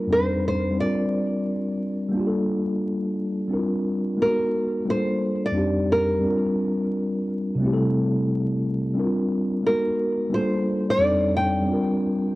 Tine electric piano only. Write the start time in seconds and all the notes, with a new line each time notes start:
Already playing: G3 A#3 D4 F4 A#4
0.07 F2 G3 C4 D4
0.12 D#4 A4
0.71 G3 C4
0.77 D4 F4
0.83 A#4
2.09 G3 A#3
2.15 D4 F4
2.20 G4
2.27 A4
3.48 G3 C4 D4
3.52 E4 A#4
3.59 F4
4.17 G#3 B3 D#4
4.22 F#4 A#4
4.85 G3 A#3 D4
4.89 F4 A4
5.51 F2 G3 C4 D4
5.56 D#4 G4
6.19 G3 C4
6.25 D4 F4
6.30 A#4
7.55 C3 G3
7.60 A3 C4
7.64 E4 G4
7.73 A4
8.94 G3 C4 D4
8.98 E4 A#4
9.04 F4
9.63 G#3 B3 D#4
9.68 F#4 A#4
10.29 G3 A#3 D4
10.34 F4 A4
10.98 F2 G3 C4 D4
11.03 D#4 A4
11.62 G3 C4
11.68 D4 F4
11.73 A#4